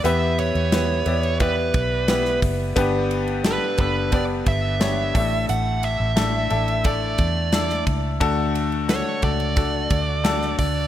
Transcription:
<<
  \new Staff \with { instrumentName = "Lead electric guitar" } { \time 4/4 \key d \major \tempo 4 = 88 e''8 cis''4. b'4. r8 | r4 b'8 b'8 d''8 e''4. | fis''8 e''4. d''4. r8 | r4 cis''8 d''2 d''8 | }
  \new Staff \with { instrumentName = "Grand piano" } { \time 4/4 \key d \major <b e' g' b'>4 <b e' g' b'>8 <b e' g' d''>8 <b e' g' d''>4 <b e' g' b'>4 | <b d' g' b'>4 <b d' g' a'>8 <b d' g' a'>8 <b d' g' b'>4 <b d' g' cis''>8 <a d' e' a'>8~ | <a d' e' a'>8. r16 <a d' e' a'>8 <a d' e' a'>8 <a d' e' a'>4 <a d' e' a'>4 | <a d' fis' a'>4 <a d' fis' a'>8 <a d' fis' a'>8 <a d' fis' a'>4 <a d' fis' a'>4 | }
  \new Staff \with { instrumentName = "Grand piano" } { \clef bass \time 4/4 \key d \major e4. r2 r8 | g,4. r2 a,8~ | a,4 r2. | d4. r2 r8 | }
  \new Staff \with { instrumentName = "Fingered electric bass" } { \clef bass \time 4/4 \key d \major e,8. e,8. e,4 b,,4 fis,,8 | g,,4~ g,,16 r16 fis,,4 g,,4 a,,8 | a,,8. a,,8. a,,4 e,4 cis,8 | d,4~ d,16 r16 cis,4 d,4 d,8 | }
  \new DrumStaff \with { instrumentName = "Drums" } \drummode { \time 4/4 <hhp cymr>8 cymr16 cymr16 <cymr sn>8 cymr16 cymr16 <bd cymr>8 <bd cymr>8 <cymr sn>16 sn16 <hho bd cymr>8 | <hhp bd cymr>8 cymr16 cymr16 <cymr sn>8 <bd cymr>8 <bd cymr>8 <bd cymr>8 <cymr sn>8 <hho bd cymr>8 | <hhp cymr>8 cymr8 <cymr sn>8 cymr16 cymr16 <bd cymr>8 <bd cymr>8 <cymr sn>16 sn16 <bd cymr>8 | <bd cymr>8 cymr16 cymr16 <cymr sn>8 <bd cymr>16 cymr16 <bd cymr>8 <bd cymr>8 <cymr sn>16 sn16 <hho bd cymr>8 | }
>>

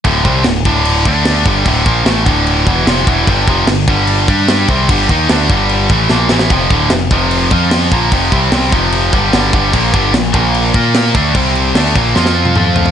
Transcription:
<<
  \new Staff \with { instrumentName = "Distorted electric guitar" } { \clef bass \time 4/4 \key d \minor \tempo 4 = 149 <d, a, d>8 <c g c'>8 <d, a,>8 <d, a, d>4 <d a d'>4 <g, d g>8 | <d, a, d>8 <bes, f bes>8 <a, e a>8 <d, a, d>4 <e, b, e>8 <f, c f>8 <e, b, e>8 | <g, d g>8 <f, c f>8 <g, d>8 <g, d g>4 <g d' g'>4 <c g c'>8 | <g, d g>8 <ees bes ees'>8 <d a d'>8 <g, d g>4 <a, e a>8 <bes, f bes>8 <a, e a>8 |
<f, c f>8 <d, a, d>8 <f, c>8 <f, c f>4 <f c' f'>4 <bes, f bes>8 | <f, c f>8 <c g c'>8 <c g c'>8 <f, c f>4 <g, d g>8 <g, d g>8 <g, d g>8 | <bes, f bes>8 <g, d g>8 <bes, f>8 <bes, f bes>4 <bes f' bes'>4 <d a d'>8 | <c g c'>4 <d a d'>8 <bes, f bes>8 <f c' f'>4 <f c' f'>4 | }
  \new Staff \with { instrumentName = "Picked electric bass" } { \clef bass \time 4/4 \key d \minor d,,8 c,8 d,,8 d,,4 d,4 g,,8 | d,,8 bes,,8 a,,8 d,,4 e,,8 f,,8 e,,8 | g,,8 f,,8 g,,8 g,,4 g,4 c,8 | g,,8 ees,8 d,8 g,,4 a,,8 bes,,8 a,,8 |
f,,8 d,,8 f,,8 f,,4 f,4 bes,,8 | f,,8 c,8 c,8 f,,4 g,,8 g,,8 g,,8 | bes,,8 g,,8 bes,,8 bes,,4 bes,4 d,8 | c,4 d,8 bes,,8 f,4 f,4 | }
  \new DrumStaff \with { instrumentName = "Drums" } \drummode { \time 4/4 <cymc bd>8 <cymc bd>8 <cymc sn>8 <cymc bd>8 cymc8 <cymc bd>8 <cymc sn>8 <cymc bd>8 | <cymc bd>8 <cymc bd>8 <cymc sn>8 <cymc bd>8 cymc8 <cymc bd>8 <cymc sn>8 <cymc bd>8 | <cymc bd>8 <cymc bd>8 <cymc sn>8 <cymc bd>8 cymc8 <cymc bd>8 <cymc sn>8 <cymc bd>8 | <cymc bd>8 <cymc bd>8 <cymc sn>8 <cymc bd>8 cymc8 <cymc bd>8 sn8 sn16 sn16 |
<cymc bd>8 <cymc bd>8 <cymc sn>8 <cymc bd>8 cymc8 <cymc bd>8 <cymc sn>8 <cymc bd>8 | <cymc bd>8 <cymc bd>8 <cymc sn>8 <cymc bd>8 cymc8 <cymc bd>8 <cymc sn>8 <cymc bd>8 | <cymc bd>8 <cymc bd>8 <cymc sn>8 <cymc bd>8 cymc8 <cymc bd>8 <cymc sn>8 <cymc bd>8 | <cymc bd>8 cymc8 <cymc sn>8 <cymc bd>8 sn16 sn8 tommh16 toml8 tomfh16 tomfh16 | }
>>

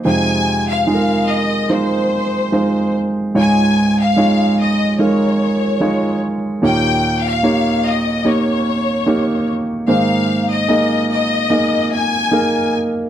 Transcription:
<<
  \new Staff \with { instrumentName = "Violin section" } { \time 4/4 \key aes \major \tempo 4 = 73 aes''8. f''8. ees''8 c''4. r8 | aes''8. f''8. ees''8 des''4. r8 | g''8. f''8. ees''8 des''4. r8 | f''8. ees''8. ees''4 aes''4 r8 | }
  \new Staff \with { instrumentName = "Grand piano" } { \time 4/4 \key aes \major <aes ees' f' c''>4 <aes ees' f' aes' bes'>4 <aes ees' f' c''>4 <aes ees' f' c''>4 | <aes ees' f' des''>4 <aes ees' f' des''>4 <aes ees' f' bes'>4 <aes ees' f' des''>4 | <bes ees' g' des''>4 <bes ees' g' des''>4 <bes ees' g' des''>4 <bes ees' g' des''>4 | <bes ees' aes' c''>4 <bes ees' aes' ees''>4 <bes ees' aes' ees''>4 <bes ees' aes' bes'>4 | }
  \new Staff \with { instrumentName = "Grand piano" } { \clef bass \time 4/4 \key aes \major <f, c>1 | <des, aes,>1 | <ees, bes,>1 | <aes, ees>1 | }
>>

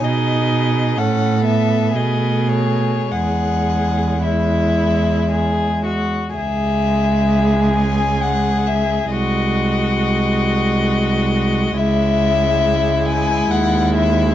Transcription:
<<
  \new Staff \with { instrumentName = "Violin" } { \time 3/4 \key e \major \tempo 4 = 65 dis''4 fis''8 e''8 dis''8 cis''8 | fis''4 e''4. r8 | \key cis \minor e''4. gis''8 fis''8 e''8 | dis''2. |
e''4. gis''8 fis''8 e''8 | }
  \new Staff \with { instrumentName = "Violin" } { \time 3/4 \key e \major gis'4 a'4 gis'4 | gis'4 e'4 gis'8 fis'8 | \key cis \minor gis'2. | fis'2. |
e'2. | }
  \new Staff \with { instrumentName = "Viola" } { \clef bass \time 3/4 \key e \major dis'4 cis'8 b8 a4 | gis4 gis2 | \key cis \minor gis2. | gis2. |
gis2. | }
  \new Staff \with { instrumentName = "Cello" } { \clef bass \time 3/4 \key e \major b,4 a,4 b,4 | e,2. | \key cis \minor cis,2. | bis,,2. |
cis,2 dis,4 | }
>>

